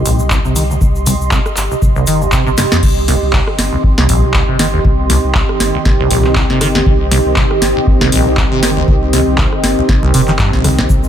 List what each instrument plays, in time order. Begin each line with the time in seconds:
Already playing: ambient pad G4 D#5 C6
0.05 acid bass A#1, sub bass C2, open hi-hat, shaker
0.19 acid bass C2, shaker
0.30 acid bass C2, kick, clap, shaker
0.45 sub bass C2, acid bass C3, shaker
0.56 acid bass D#3, open hi-hat, shaker
0.70 acid bass D2, shaker
0.81 sub bass C2, kick, mid tom, shaker
0.95 shaker
1.06 acid bass C2, open hi-hat, mid tom, shaker
1.21 sub bass C2, shaker
1.31 acid bass C2, kick, clap, shaker
1.46 cross-stick, shaker
1.57 sub bass G1, clap, open hi-hat, shaker
1.71 acid bass C2, shaker
1.82 sub bass A#1, kick, mid tom, shaker
1.96 acid bass C2, shaker
2.07 sub bass G1, acid bass D#3, open hi-hat, shaker
2.21 acid bass A#1, shaker
2.32 acid bass C3, kick, clap, shaker
2.47 sub bass A#1, acid bass C3, shaker
2.58 acid bass G2, snare, open hi-hat, mid tom, shaker
2.72 acid bass F2, snare, shaker
2.83 sub bass C2, analog synth pad D#3 C4 G4, kick, mid tom, crash
3.08 acid bass C2, snare, open hi-hat
3.22 sub bass C2
3.33 acid bass C2, kick, clap
3.47 cross-stick
3.59 sub bass G1, snare, open hi-hat
3.73 acid bass C2
3.84 sub bass A#1, kick
3.98 acid bass C2, snare
4.09 acid bass A#1, sub bass C2, open hi-hat
4.23 acid bass C2
4.34 acid bass C2, kick, clap
4.48 sub bass G1, acid bass C3
4.59 acid bass D#3, snare, open hi-hat
4.73 acid bass D2
4.85 sub bass C2, kick, mid tom
5.10 acid bass C2, snare, open hi-hat
5.24 sub bass C2
5.35 acid bass C2, kick, clap
5.49 cross-stick
5.60 sub bass G1, snare, open hi-hat
5.74 acid bass C2
5.85 sub bass A#1, kick, snare, mid tom
5.99 acid bass C2
6.11 acid bass A#1, sub bass C2, open hi-hat
6.24 acid bass C2, clap
6.36 acid bass C2, kick, clap
6.50 sub bass G1, acid bass C3, snare
6.61 acid bass D#3, cross-stick, open hi-hat, mid tom
6.75 acid bass D2, snare
6.86 sub bass C2, kick, mid tom
7.11 acid bass C2, snare, open hi-hat
7.26 sub bass C2
7.36 acid bass C2, kick, clap
7.51 cross-stick
7.62 sub bass G1, snare, open hi-hat
7.76 acid bass C2
7.87 sub bass A#1, kick
8.01 acid bass C2, snare
8.12 acid bass A#1, sub bass C2, open hi-hat
8.26 acid bass C2
8.37 acid bass C2, kick, clap
8.52 sub bass G1, acid bass C3
8.63 acid bass D#3, snare, open hi-hat
8.77 acid bass D2
8.88 sub bass C2, kick, mid tom
9.13 acid bass C2, snare, open hi-hat
9.27 sub bass C2
9.38 acid bass C2, kick, clap
9.52 cross-stick
9.63 sub bass G1, snare, open hi-hat
9.78 acid bass C2
9.89 sub bass A#1, kick, snare, mid tom
10.03 acid bass C2
10.14 sub bass G1, acid bass C3, open hi-hat
10.28 acid bass D#3, clap
10.39 acid bass G2, kick, clap
10.53 acid bass A#1, sub bass C2, snare
10.64 acid bass C2, cross-stick, open hi-hat, mid tom
10.78 acid bass A#1, snare
10.90 sub bass C2, analog synth pad A4, kick, mid tom, shaker
11.04 shaker